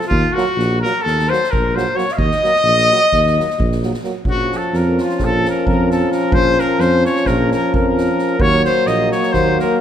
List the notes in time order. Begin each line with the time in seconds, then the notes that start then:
0.01 snare
0.07 D#2 F4, kick
0.32 F#4
0.36 F#3 A#3, snare
0.57 A#1, snare
0.79 A#4
0.83 F#3 A#3, snare
1.02 D#2 A4
1.06 snare
1.19 snare
1.28 F#3 A#3 C5
1.33 snare
1.43 snare
1.50 A#1 A#4, kick
1.75 F#3 A#3 C5, snare
1.95 F#3 A#3 C#5, snare
2.08 F5, snare
2.13 D#5 F5
2.17 D#2, kick
2.31 snare
2.43 F#3 A#3, snare
2.55 snare
2.64 A#1, snare
2.79 snare
2.90 F#3 A#3, snare
3.12 D#2, kick, snare
3.26 snare
3.37 F#3 A#3, snare
3.50 snare
3.59 A#1, kick
3.72 snare
3.82 F#3 A#3, snare
3.94 snare
4.03 F#3 A#3, snare
4.24 A#1 F3 C#4 F#4, kick
4.30 F#4
4.52 A4, snare
4.57 A4
4.73 F2 A#4, snare
4.98 F4, snare
5.02 F4
5.09 snare
5.19 A#1 A4, kick, snare
5.24 A4
5.45 A#4, snare
5.50 A#4
5.66 F2 A#4, kick
5.91 A4, snare
6.12 A#4, snare
6.32 A#1 C5, kick
6.59 A#4, snare
6.79 F2 C5, snare
7.05 C#5, snare
7.16 snare
7.26 A#1 A#4, kick, snare
7.51 A#4, snare
7.73 F2 A#4, kick
7.98 snare
8.18 snare
8.39 D#2 F#3 A#3 C#5, kick
8.64 C5, snare
8.86 A#1 D#5, snare
9.12 C#5, snare
9.23 snare
9.33 D#2 C5, kick, snare
9.59 A#4, snare